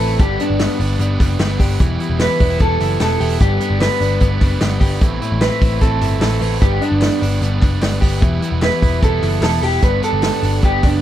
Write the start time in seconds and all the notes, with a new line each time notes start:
Already playing: A2 C4 E4 A4
0.00 A1 A3 C4 E4 B4
0.19 G1 G2 D3 G3 B3 D4 G4, kick, hi-hat pedal, open hi-hat
0.39 G3 B3 D4, hi-hat pedal, open hi-hat
0.50 G1
0.60 G2 D3 G3 B3 D4, snare, clap, hi-hat pedal, open hi-hat
0.79 G1 G3 B3 D4, hi-hat pedal, open hi-hat
0.99 G1 D3 G3 B3 D4, hi-hat pedal, open hi-hat
1.20 F#1 G3 B3 D4, kick, clap, hi-hat pedal, open hi-hat
1.39 G1 G2 D3 G3 B3 D4, snare, clap, hi-hat pedal, open hi-hat
1.59 G1 G3 B3 D4 G4, kick, hi-hat pedal, open hi-hat
1.79 E1 E3 G3 B3 E4, kick, hi-hat pedal, open hi-hat
1.99 G3 B3 E4, hi-hat pedal, open hi-hat
2.10 E1
2.19 E3 G3 B3 E4 B4, snare, clap, hi-hat pedal, open hi-hat
2.40 E1 G3 B3 D4 E4, kick, hi-hat pedal, open hi-hat
2.50 E4
2.59 E1 E3 G3 B3 E4 A4, kick, hi-hat pedal, open hi-hat
2.80 F#1 G3 B3 E4, clap, hi-hat pedal, open hi-hat
3.00 E1 E3 G3 B3 E4 A4, snare, clap, hi-hat pedal, open hi-hat
3.20 E1 G3 B3 E4 G4, hi-hat pedal, open hi-hat
3.40 G1 G2 D3 G3 B3 D4 G4, kick, hi-hat pedal, open hi-hat
3.60 G3 B3 D4, hi-hat pedal, open hi-hat
3.70 G1
3.81 G2 D3 G3 B3 D4 B4, snare, clap, hi-hat pedal, open hi-hat
4.01 G1 G3 B3 D4, hi-hat pedal, open hi-hat
4.20 G1 D3 G3 B3 D4, kick, hi-hat pedal, open hi-hat
4.40 F#1 G3 B3 D4, kick, clap, hi-hat pedal, open hi-hat
4.61 G1 G2 D3 G3 B3 D4, snare, clap, hi-hat pedal, open hi-hat
4.80 G1 G3 B3 D4 G4, kick, hi-hat pedal, open hi-hat
5.01 A1 A2 E3 A3 C4 E4 B4, kick, hi-hat pedal, open hi-hat
5.21 A3 C4 E4 B4, hi-hat pedal, open hi-hat
5.32 A1
5.41 A2 E3 A3 C4 E4 B4, snare, clap, hi-hat pedal, open hi-hat
5.61 A1 A3 C4 E4 B4, kick, hi-hat pedal, open hi-hat
5.81 A1 A3 C4 E4 A4 B4, kick, hi-hat pedal, open hi-hat
6.01 G1 A3 C4 E4 B4, clap, hi-hat pedal, open hi-hat
6.21 A1 A2 E3 A3 C4 E4 A4 B4, snare, clap, hi-hat pedal, open hi-hat
6.41 A1 A3 C4 E4 B4, hi-hat pedal, open hi-hat
6.61 G1 G2 D3 G3 B3 D4 G4, kick, hi-hat pedal, open hi-hat
6.81 G3 B3 D4, hi-hat pedal, open hi-hat
6.92 G1
7.01 G2 D3 G3 B3 D4, snare, clap, hi-hat pedal, open hi-hat
7.21 G1 G3 B3 D4, hi-hat pedal, open hi-hat
7.41 G1 D3 G3 B3 D4, hi-hat pedal, open hi-hat
7.61 F#1 G3 B3 D4, kick, clap, hi-hat pedal, open hi-hat
7.81 G1 G2 D3 G3 B3 D4, snare, clap, hi-hat pedal, open hi-hat
8.01 G1 G3 B3 D4 G4, kick, hi-hat pedal, open hi-hat
8.21 E1 E3 G3 B3 E4, kick, hi-hat pedal, open hi-hat
8.41 G3 B3 E4, hi-hat pedal, open hi-hat
8.52 E1
8.61 E3 G3 B3 E4 B4, snare, clap, hi-hat pedal, open hi-hat
8.81 E1 G3 B3 E4, kick, hi-hat pedal, open hi-hat
9.01 E1 E3 G3 B3 E4 A4, kick, hi-hat pedal, open hi-hat
9.22 F#1 G3 B3 E4, clap, hi-hat pedal, open hi-hat
9.41 E1 E3 G3 B3 E4 A4, snare, clap, hi-hat pedal, open hi-hat
9.62 E1 G3 B3 E4 G4, hi-hat pedal, open hi-hat
9.82 G1 G2 D3 G3 B3 D4 B4, kick, hi-hat pedal, open hi-hat
10.02 G3 B3 D4 A4, hi-hat pedal, open hi-hat
10.13 G1
10.22 G2 D3 G3 B3 D4, snare, clap, hi-hat pedal, open hi-hat
10.42 G1 G3 B3 D4, hi-hat pedal, open hi-hat
10.62 G1 D3 G3 B3 D4 G4 G5, kick, hi-hat pedal, open hi-hat
10.83 F#1 G3 B3 D4 D5, kick, clap, hi-hat pedal, open hi-hat